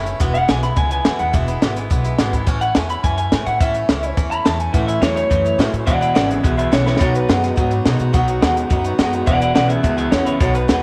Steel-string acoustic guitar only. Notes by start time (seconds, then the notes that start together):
0.06 A3 C#4 E4
0.20 E2 B2 E3 G#3 B3 E4
0.34 E3 G#3 B3 E4
0.48 E2 B2 E3 G#3 B3 E4
0.63 E3 G#3 B3 E4
0.76 E3 G#3 B3 E4
0.90 E3 G#3 B3 E4
1.05 E2 B2 E3 G#3 B3 E4
1.19 E3 G#3 B3 E4
1.33 E2 B2 E3 G#3 B3 E4
1.47 E3 G#3 B3 E4
1.62 E2 B2 E3 G#3 B3 E4
1.76 E3 G#3 B3 E4
1.90 E3 G#3 B3 E4
2.04 E3 G#3 B3 E4
2.19 E2 B2 E3 G#3 B3 E4
2.33 E3 G#3 B3 E4
2.47 A2 E3 A3 C#4 E4
2.61 A3 C#4 E4
2.75 A2 E3 A3 C#4 E4
2.89 A3 C#4 E4
3.03 E3 A3 C#4 E4
3.17 A3 C#4 E4
3.32 A2 E3 A3 C#4 E4
3.46 A3 C#4 E4
3.61 A2 E3 A3 C#4 E4
3.75 A3 C#4 E4
3.89 A2 E3 A3 C#4 E4
4.03 A3 C#4 E4
4.17 E3 A3 C#4 E4
4.31 A3 C#4 E4
4.45 A2 E3 A3 C#4 E4
4.60 A3 C#4 E4
4.74 A2 E3 A3 C#4 E4
4.88 A3 C#4 E4
5.02 A2 E3 A3 C#4 E4
5.16 A3 C#4 E4
5.30 E3 A3 C#4 E4
5.45 A3 C#4 E4
5.59 A2 E3 A3 C#4 E4
5.72 A3 C#4 E4
5.87 E2 B2 E3 G#3 B3 E4
6.01 E3 G#3 B3 E4
6.15 E2 B2 E3 G#3 B3 E4
6.29 E3 G#3 B3 E4
6.44 E3 G#3 B3 E4
6.57 E3 G#3 B3 E4
6.72 E2 B2 E3 G#3 B3 E4
6.86 E3 G#3 B3 E4
7.00 B2 F#3 B3 D#4 F#4
7.15 B3 D#4 F#4
7.29 B2 F#3 B3 D#4 F#4
7.42 B3 D#4 F#4
7.56 F#3 B3 D#4 F#4
7.71 B3 D#4 F#4
7.86 B2 F#3 B3 D#4 F#4
7.99 B3 D#4 F#4
8.13 B2 F#3 B3 D#4 F#4
8.28 B3 D#4 F#4
8.42 B2 F#3 B3 D#4 F#4
8.57 B3 D#4 F#4
8.70 F#3 B3 D#4 F#4
8.84 B3 D#4 F#4
8.98 B2 F#3 B3 D#4 F#4
9.13 B3 D#4 F#4
9.26 E2 B2 E3 B3 E4 G#4
9.40 E3 B3 E4 G#4
9.55 E2 B2 E3 B3 E4 G#4
9.69 E3 B3 E4 G#4
9.83 E3 B3 E4 G#4
9.97 E3 B3 E4 G#4
10.12 E2 B2 E3 B3 E4 G#4
10.26 E3 B3 E4 G#4
10.40 B2 F#3 B3 D#4 F#4
10.53 B3 D#4 F#4
10.68 B2 F#3 B3 D#4 F#4